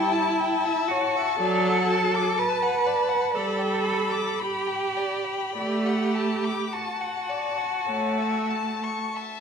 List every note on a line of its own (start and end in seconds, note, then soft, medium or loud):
0.00 0.20 G3 medium
0.00 0.90 E4 loud
0.00 0.14 G5 medium
0.00 3.37 A5 medium
0.13 0.41 A5 medium
0.40 0.67 G5 medium
0.65 0.92 E5 medium
0.88 1.39 F#4 medium
0.88 1.18 C#5 medium
1.16 1.40 E5 medium
1.39 2.23 F#3 medium
1.39 2.40 A4 medium
1.39 1.67 D5 medium
1.66 1.92 F#5 medium
1.91 2.16 A5 medium
2.15 2.39 D6 medium
2.38 3.37 B4 medium
2.38 2.64 A5 medium
2.63 2.88 F#5 medium
2.86 3.10 D5 medium
3.09 3.34 F#5 medium
3.34 4.23 G3 medium
3.34 4.43 A4 medium
3.34 3.60 D5 medium
3.34 6.75 B5 medium
3.58 3.85 G5 soft
3.84 4.13 B5 medium
4.11 4.41 D6 medium
4.39 5.57 G4 medium
4.39 4.69 B5 medium
4.67 4.98 G5 soft
4.97 5.26 D5 medium
5.25 5.54 G5 soft
5.55 6.55 A3 medium
5.55 6.75 G4 medium
5.55 5.87 D5 medium
5.86 6.17 F#5 soft
6.15 6.46 A5 soft
6.44 6.75 D6 soft
6.73 9.17 F#4 medium
6.73 7.02 A5 medium
6.73 9.16 A5 medium
7.01 7.31 F#5 soft
7.29 7.59 D5 medium
7.58 7.88 F#5 soft
7.88 8.96 A3 medium
7.88 8.19 C#5 soft
8.18 8.52 E5 soft
8.50 8.85 A5 soft
8.83 9.18 C#6 soft
9.16 9.40 E5 medium
9.16 9.40 A5 soft